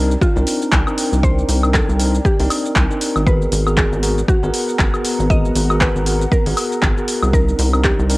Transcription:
Already playing: C2 C4 D4 D#4 A#4 D5 G5
0.11 shaker
0.22 F4, kick, shaker
0.36 C2 C4 D4 D#4 A#4, shaker
0.47 open hi-hat, shaker
0.62 shaker
0.72 C2, kick, clap, shaker
0.87 C4 D4 D#4 A#4, high woodblock, shaker
0.98 open hi-hat, shaker
1.12 C2, shaker
1.23 C4 D4 D#4 A#4 C5, kick, shaker
1.38 shaker
1.49 C2, open hi-hat, shaker
1.63 C4 D4 D#4 A#4, high woodblock, shaker
1.74 A4, kick, clap, shaker
1.89 C2, shaker
1.99 C4 D4 D#4 A#4, open hi-hat, shaker
2.15 shaker
2.25 G4, kick, shaker
2.39 C2 C4 D4 D#4 A#4, open hi-hat, shaker
2.50 open hi-hat, high woodblock, shaker
2.66 shaker
2.76 C2, kick, clap, shaker
2.90 C4 D4 D#4 A#4, shaker
3.01 open hi-hat, shaker
3.16 G#1, high woodblock, shaker
3.27 B3 F#4 G#4 A#4 B4 F#5 A#5, kick, shaker
3.42 shaker
3.52 G#1, open hi-hat, shaker
3.67 B3 F#4 G#4 A#4, high woodblock, shaker
3.77 G#4, kick, clap, shaker
3.92 G#1, shaker
4.03 B3 F#4 G#4 A#4, open hi-hat, shaker
4.18 shaker
4.28 F#4, kick, shaker
4.43 G#1 B3 F#4 G#4 A#4, shaker
4.54 open hi-hat, shaker
4.69 shaker
4.79 G#1, kick, clap, shaker
4.94 B3 F#4 G#4 A#4, high woodblock, shaker
5.05 open hi-hat, shaker
5.19 G#1, shaker
5.30 B3 F#4 G#4 A#4 D#5, kick, shaker
5.45 shaker
5.55 G#1, open hi-hat, shaker
5.70 B3 F#4 G#4 A#4, high woodblock, shaker
5.81 B4, kick, clap, shaker
5.96 G#1, shaker
6.06 B3 F#4 G#4 A#4, open hi-hat, shaker
6.21 shaker
6.32 A#4, kick, shaker
6.46 G#1 B3 F#4 G#4 A#4, open hi-hat, shaker
6.57 open hi-hat, high woodblock, shaker
6.72 shaker
6.83 G#1, kick, clap, shaker
6.97 B3 F#4 G#4 A#4, shaker
7.08 open hi-hat, shaker
7.23 C2, high woodblock, shaker
7.33 C4 D4 D#4 A#4 D5 G5 A#5, kick, shaker
7.49 shaker
7.59 C2, open hi-hat, shaker
7.73 C4 D4 D#4 A#4, high woodblock, shaker
7.84 G4, kick, clap, shaker
7.99 C2, shaker
8.10 C4 D4 D#4 A#4, open hi-hat, shaker

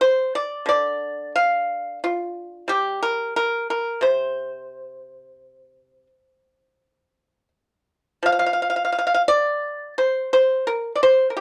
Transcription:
0.01 C5
0.35 D5
0.66 D3 D5
1.35 F5
2.04 F4
2.68 G3 G4
3.03 A#4
3.36 A#4
3.70 A#4
4.01 C3 C5
8.22 F3 F5
8.32 F5
8.39 F5
8.46 F5
8.53 F5
8.62 F5
8.70 F5
8.76 F5
8.85 F5
8.92 F5
8.98 F5
9.07 F5
9.14 F5
9.28 D5
9.98 C5
10.33 C5
10.67 A#4
10.95 D5
11.03 C5
11.30 A#4
11.36 G4

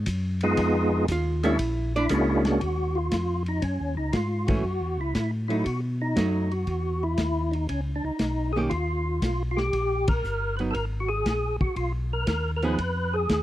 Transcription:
0.06 F#2, kick, hi-hat pedal, ride
0.41 G#3 B3 D#4 F4 G#4, ride
0.57 F2, kick, ride
1.08 D#2 F4 F5, kick, hi-hat pedal, ride
1.43 G#3 A#3 C#4 D4 E4 F#4 E5, ride
1.59 A#1, kick, ride
1.96 D4 E4 D5
2.09 C#2 G#3 A#3 C#4 D4 E4 F#4, kick, hi-hat pedal, ride
2.45 F#4, snare, ride
2.61 D#2, kick, ride
2.95 F4
3.11 F2, kick, snare, hi-hat pedal, ride
3.46 D#4, ride
3.62 F#2 C#4, kick, ride
3.80 D#2
3.96 C#2 D#4
4.13 G#2 F4, kick, snare, hi-hat pedal, ride
4.47 E3 A3 C#4 F#4, kick, ride
4.64 F#2
4.81 E2
4.97 C#2 E4
5.15 A2 E4, kick, snare, hi-hat pedal, ride
5.48 F#3 A3 D#4 E4, ride
5.64 B2 F#4, kick, ride
6.02 D#4
6.16 F#2 F#3 A3 D#4, kick, snare, hi-hat pedal, ride
6.51 F#4, ride
6.67 E2, kick, ride
7.03 E4
7.17 D#2, kick, snare, hi-hat pedal, ride
7.51 D#4, ride
7.69 C#2 C#4, kick, ride
7.96 D4
8.03 C#2 D#4
8.19 B1, kick, snare, hi-hat pedal, ride
8.53 D#3 A#3 G#4
8.57 C#4 G4
8.70 D#2 F4, kick, ride
9.22 B1, kick, snare, hi-hat pedal, ride
9.51 F4
9.57 G4, snare
9.73 A#1, kick, ride
10.07 A#4, kick, ride
10.24 G1, hi-hat pedal
10.57 F#3 B3 B4, ride
10.61 D#4
10.71 A4 A#4, ride
10.75 G#1, kick
11.00 F#4
11.09 G#4
11.26 A#1, kick, snare, hi-hat pedal, ride
11.61 A#1 F#4, kick
11.76 B1 F4, kick, ride
12.13 A#4
12.27 D#2 A#4, kick, snare, hi-hat pedal, ride
12.56 A#4
12.62 F3 B3 D#4 G#4 B4, ride
12.78 F2, kick, ride
13.13 G#4
13.29 D#2, kick, snare, hi-hat pedal, ride

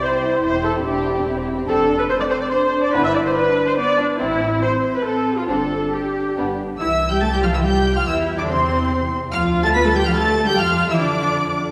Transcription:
0.02 C2 E4 C5
0.13 C4 G4
0.23 E4
0.34 C4 G4
0.44 E1 E4 C5
0.54 C4 G4
0.64 E4 A4
0.74 C4 G4
0.85 E1 D4 E4 G4
0.95 C4 G4
1.06 E4
1.16 C4 G4
1.26 E1 C4 E4
1.37 C4 G4
1.47 E4
1.57 C4 G4
1.68 F1 C4 D4 A4
1.99 B4
2.09 C4 C5
2.20 D5
2.30 C5
2.41 D5
2.51 D4 C5
2.83 D5
2.93 G1 B3 D4 E4 B4
3.04 E5
3.14 D5
3.25 C5
3.35 D4 B4
3.67 C5
3.78 B3 D5
3.99 D4
4.20 A1 C4 E4
4.62 C5
4.95 B4
5.05 C4 A4
5.38 F4
5.48 G1 C4 D4 A4
5.93 G4
6.37 G1 B3 D4
6.79 C2 E3 E4 E5 E6
7.11 G3 G4 G5 G6
7.22 A3 A4 A5 A6
7.32 G3 G4 G5 G6
7.43 F3 F4 F5 F6
7.53 E3 E4 E5 E6
7.64 G3 G4 G5 G6
7.96 F3 F4 F5 F6
8.07 E2 E3 E4 E5 E6
8.39 D3 D4 D5 D6
8.49 C3 C4 C5 C6
9.33 D2 F3 F4 F5 F6
9.64 A3 A4 A5 A6
9.75 B3 B4 B5 B6
9.85 A3 A4 A5 A6
9.95 G3 G4 G5 G6
10.06 F3 F4 F5 F6
10.16 A3 A4 A5 A6
10.48 G3 G4 G5 G6
10.58 F2 F3 F4 F5 F6
10.89 E3 E4 E5 E6
11.00 D3 D4 D5 D6

